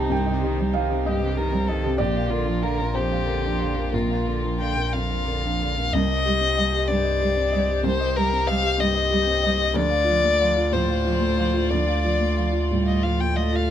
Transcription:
Already playing: felt piano C2 G2 C4 G4 D#5 F5 G5 A5, sub bass C2, cello C3, string section G3 G4 C5, violin D#4
0.10 felt piano C2 G5, cello G2
0.26 cello C3, felt piano D#5
0.41 cello D#3, felt piano G4
0.57 cello G3, felt piano C4
0.73 cello D#3, felt piano D#5 F5
0.89 cello C3, felt piano G4
1.05 felt piano G2 D#5, cello G2, violin G4
1.19 cello C3, felt piano D#5
1.35 cello D#3, felt piano G4, violin A#4
1.52 cello G3, felt piano C4
1.68 cello D#3, violin A4, felt piano D#5
1.84 cello C3, felt piano G4
1.98 sub bass A#1, felt piano A#1 D5, cello F2, string section A#3 F4 A#4, violin G4
2.15 cello A#2, felt piano F5
2.29 cello D3, violin F4, felt piano A#4
2.45 cello F3, felt piano D4
2.62 cello D3, violin A#4, felt piano F5
2.78 cello A#2, felt piano A#4
2.94 felt piano F2 C5, cello F2, violin G4
3.11 cello A#2, felt piano F5
3.25 cello D3, felt piano A#4
3.42 cello F3, felt piano D4
3.60 cello D3, felt piano F5
3.77 cello A#2, felt piano A#4
3.92 felt piano A#1 A#4, cello F2, violin F4
4.10 cello A#2, felt piano F5
4.27 cello D3
4.43 cello F3, felt piano D4
4.59 cello D3, felt piano F5, violin G5
4.76 cello A#2, felt piano A#4
4.93 felt piano F2, cello F2, violin F5
5.10 cello A#2, felt piano F5
5.27 cello D3, felt piano A#4
5.42 cello F3, felt piano D4
5.61 cello D3, felt piano F5
5.77 cello A#2, felt piano A#4
5.93 sub bass C2, felt piano C2, string section G3 G4 C5, cello G3, violin D#5
6.09 felt piano D#5
6.25 cello G3, felt piano G4
6.41 felt piano C4
6.57 cello G3, felt piano D#5
6.73 felt piano G4
6.88 felt piano G2, cello G3, violin D5
7.04 felt piano D#5
7.19 cello G3, felt piano G4
7.36 felt piano C4
7.52 cello G3, felt piano D#5
7.68 felt piano G4
7.83 felt piano C2, cello G3, violin C5
8.00 felt piano D#5
8.16 cello G3, felt piano G4, violin A#4
8.33 felt piano C4
8.47 cello G3, felt piano D#5, violin F5
8.63 felt piano G4
8.78 felt piano G2, cello G3, violin D#5
8.94 felt piano D#5
9.11 cello G3, felt piano G4
9.26 felt piano C4
9.43 cello G3, felt piano D#5
9.58 felt piano G4
9.74 felt piano D2, sub bass D2, cello F3, string section A3 F4 D5, violin D5
9.89 felt piano F5
10.04 felt piano F4
10.09 cello F3
10.22 felt piano A3
10.39 cello F3, felt piano F5
10.56 felt piano F4
10.72 felt piano A2, cello F3, violin C5
10.88 felt piano F5
11.05 cello F3, felt piano F4
11.20 felt piano A3
11.38 cello F3, felt piano F5
11.53 felt piano F4
11.69 felt piano D2, cello F3, violin D5
11.87 felt piano F5
12.04 cello F3, felt piano F4
12.20 felt piano A3
12.37 cello F3, felt piano F5
12.52 felt piano F4
12.70 felt piano A2, cello G3
12.86 violin D#5, felt piano F5
13.03 cello F3, felt piano F4, violin F5
13.20 felt piano A3, violin G5
13.36 cello A3, violin D#5, felt piano F5
13.53 felt piano F4, violin F5

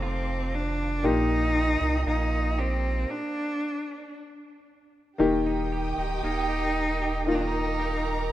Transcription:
Already playing: sub bass F1, clean electric guitar F2 D#3 A3 D#4, upright piano D#3 A3 D#4 F4 G4, string section C5 F5 A5 D6
0.02 cello C4, clean electric guitar F4
0.54 cello D4
1.03 sub bass A#1, upright piano A#2 A#3 D#4 G4, clean electric guitar A#2, cello D#4, string section A#4 D#5 G5 D#6
1.56 clean electric guitar D#4
1.81 sub bass C2
2.07 sub bass A#1, clean electric guitar A#3, cello D#4
2.58 cello C4, clean electric guitar G4
3.10 cello D4
5.18 sub bass D#1, upright piano D#3 A#3 D#4 G4, clean electric guitar D#3, violin section G4 G5, string section A#4 D#5 G5 D#6
5.47 clean electric guitar D#4
5.72 clean electric guitar G4
5.98 sub bass D1, clean electric guitar D#4
6.24 sub bass D#1, clean electric guitar A#3, cello D#4
6.50 clean electric guitar G4
6.76 clean electric guitar D#4
7.02 clean electric guitar G4
7.26 clean electric guitar D#3, upright piano A#3 D#4 F4, cello D#4, violin section A#4 A#5, string section D6
7.35 cello D4
7.43 cello D#4
7.54 clean electric guitar D#4
7.80 clean electric guitar G4
8.05 clean electric guitar D#4

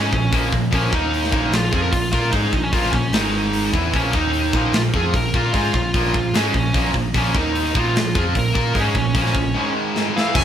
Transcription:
Already playing: picked electric bass G#2, distorted electric guitar G#3 D#4 G#4, lead electric guitar C#4
0.12 picked electric bass A#1, distorted electric guitar A#2 F3, kick
0.32 picked electric bass A#1, distorted electric guitar A#2 F3 A#3, kick, open hi-hat
0.52 picked electric bass A#1, distorted electric guitar A#2 F3, kick
0.71 picked electric bass A#1, distorted electric guitar A#2 F3 A#3, lead electric guitar C#4, kick, open hi-hat
0.92 picked electric bass D#2, distorted electric guitar D#3 A#3 D#4, lead electric guitar D#4, kick
1.14 open hi-hat
1.24 snare
1.32 picked electric bass A#1, distorted electric guitar A#2 F3 A#3, kick
1.49 picked electric bass A#1, distorted electric guitar A#2 F3, open hi-hat
1.54 lead electric guitar F4, snare
1.71 picked electric bass F2, distorted electric guitar F3 C4 F4, lead electric guitar G#4, kick
1.82 lead electric guitar A#4
1.91 picked electric bass A#1, distorted electric guitar A#2 F3, lead electric guitar F4, kick, open hi-hat
2.11 picked electric bass A#2, distorted electric guitar A#3 F4 A#4, lead electric guitar F4, kick
2.31 picked electric bass G#2, distorted electric guitar G#3 D#4 G#4, lead electric guitar D#4, kick, open hi-hat
2.52 picked electric bass A#1, distorted electric guitar A#2 F3, kick
2.63 lead electric guitar C#4
2.72 picked electric bass A#1, distorted electric guitar A#2 F3 A#3, lead electric guitar F4, kick, open hi-hat
2.84 snare
2.91 picked electric bass A#1, distorted electric guitar A#2 F3, lead electric guitar C#4, kick
3.10 picked electric bass G#1, distorted electric guitar G#2 D#3 G#3, lead electric guitar D#4, snare, open hi-hat
3.53 open hi-hat
3.73 picked electric bass E2, distorted electric guitar E3 B3 E4, kick
3.93 picked electric bass A#1, distorted electric guitar A#2 F3 A#3, lead electric guitar C#4, kick, open hi-hat
4.13 picked electric bass D#2, distorted electric guitar D#3 A#3 D#4, lead electric guitar D#4, kick
4.33 open hi-hat
4.53 picked electric bass A#1, distorted electric guitar A#2 F3 A#3, kick
4.73 picked electric bass A#1, distorted electric guitar A#2 F3, lead electric guitar F4, snare, open hi-hat
4.93 picked electric bass F2, distorted electric guitar F3 C4 F4, lead electric guitar G#4, kick
5.13 picked electric bass A#1, distorted electric guitar A#2 F3, lead electric guitar A#4, kick, open hi-hat
5.33 picked electric bass A#2, distorted electric guitar A#3 F4 A#4, lead electric guitar F4, kick
5.53 picked electric bass G#2, distorted electric guitar G#3 D#4 G#4, lead electric guitar F4, kick, open hi-hat
5.74 picked electric bass A#1, distorted electric guitar A#2 F3, lead electric guitar F4, kick
5.94 picked electric bass A#1, distorted electric guitar A#2 F3 A#3, kick, open hi-hat
6.14 picked electric bass A#1, distorted electric guitar A#2 F3, kick
6.32 picked electric bass G#2, distorted electric guitar G#3 D#4 G#4, snare, open hi-hat
6.36 lead electric guitar C#4
6.54 picked electric bass A#1, distorted electric guitar A#2 F3, kick
6.74 picked electric bass A#1, distorted electric guitar A#2 F3 A#3, kick, open hi-hat
6.93 picked electric bass A#1, distorted electric guitar A#2 F3, kick
7.14 picked electric bass A#1, distorted electric guitar A#2 F3 A#3, lead electric guitar C#4, kick, open hi-hat
7.34 picked electric bass D#2, distorted electric guitar D#3 A#3 D#4, kick
7.39 lead electric guitar D#4
7.55 open hi-hat
7.74 picked electric bass A#1, distorted electric guitar A#2 F3 A#3, kick
7.79 lead electric guitar F4
7.92 picked electric bass A#1, distorted electric guitar A#2 F3, open hi-hat
7.97 snare
8.15 picked electric bass F2, distorted electric guitar F3 C4 F4, lead electric guitar G#4, kick
8.34 picked electric bass A#1, distorted electric guitar A#2 F3, kick, open hi-hat
8.39 lead electric guitar A#4
8.54 picked electric bass A#2, distorted electric guitar A#3 F4 A#4, kick
8.74 picked electric bass G#2, distorted electric guitar G#3 D#4 G#4, kick, open hi-hat
8.80 lead electric guitar C#4
8.94 picked electric bass A#1, distorted electric guitar A#2 F3, lead electric guitar C#4, kick
9.14 picked electric bass A#1, distorted electric guitar A#2 F3 A#3, kick, open hi-hat
9.27 snare
9.34 picked electric bass A#1, distorted electric guitar A#2 F3, kick
9.55 distorted electric guitar G#2 D#3 G#3
9.96 snare
10.16 distorted electric guitar E3 B3 E4, lead electric guitar F5, snare
10.35 picked electric bass F#1, distorted electric guitar F#2 C#3 F#3 A#3 C#4, lead electric guitar G#5, kick, crash

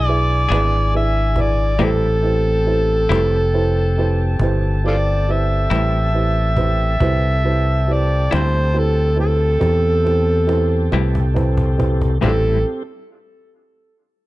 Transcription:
Already playing: fingered electric bass B1, tonewheel organ D4 E4 G#4, horn section D5 G#5, harmonica E5
0.06 upright piano E4 G#4 B4 E5, harmonica D5, cajon slap
0.49 fingered electric bass G#1, clean electric guitar E3 B3 D4 G#4, upright piano E4, cajon slap
0.53 upright piano G#4 B4 D5
0.94 upright piano E4 G#4 B4 D5, harmonica E5
1.35 upright piano E4 G#4 B4 D5, cajon bass
1.41 harmonica D5
1.79 fingered electric bass A1, clean electric guitar A2 G3 C4 E4, tonewheel organ C4 G4 A4, horn section C4 G5 A5, upright piano E4 G4 B4 C5, cajon bass
1.84 harmonica A4
2.22 upright piano E4 G4 B4 C5
2.66 upright piano E4 G4 B4 C5, cajon slap
3.09 fingered electric bass F1, clean electric guitar A2 G3 C4 E4, upright piano E4 G4 B4 C5, cajon slap
3.54 upright piano E4 G4 B4 C5
3.97 upright piano E4 G4 B4 C5, cajon slap
4.39 fingered electric bass G1, upright piano E4 G4 B4 C5, cajon bass
4.84 upright piano E4 G4 B4 C5, harmonica F4 A4 D5
5.26 upright piano E4 G4 B4, cajon slap
5.30 upright piano C5, harmonica E5
5.70 fingered electric bass A1, clean electric guitar A2 G3 C4 E4, upright piano E4 G4 B4 C5, cajon slap
6.14 upright piano E4 G4 B4 C5
6.57 upright piano E4 G4 B4 C5, cajon bass
7.00 fingered electric bass C2, tonewheel organ C4 G4 A4, upright piano E4 G4 B4 C5, cajon bass
7.45 upright piano E4 G4 B4 C5
7.87 upright piano E4 G4 B4 C5, cajon slap
7.93 harmonica D5
8.30 fingered electric bass D2, clean electric guitar A2 G3 C4 E4, upright piano E4 G4 C5 B5, harmonica C5, cajon slap
8.73 upright piano E4 G4 B4 C5
8.78 harmonica A4
9.16 upright piano E4 G4 B4 C5, cajon slap
9.20 harmonica A4
9.60 fingered electric bass E2, upright piano E4 G4 B4 C5, cajon bass, cajon slap
10.04 upright piano E4 G4 B4 C5, cajon slap
10.47 upright piano E4 G4 B4 C5, cajon slap
10.92 fingered electric bass C2, clean electric guitar A2 G3 C4 E4, upright piano E4 G4 B4 C5, cajon slap
11.15 cajon bass
11.34 upright piano E4 G4 B4 C5, cajon bass
11.57 cajon bass
11.78 upright piano E4 G4 B4 C5, cajon bass
12.01 cajon bass
12.21 fingered electric bass A1, clean electric guitar A2 G3 C4 E4, horn section C4 G4 A4, tonewheel organ C4 G4 A4, harmonica D4 F4 A4, upright piano E4 G4 B4 C5, cajon bass

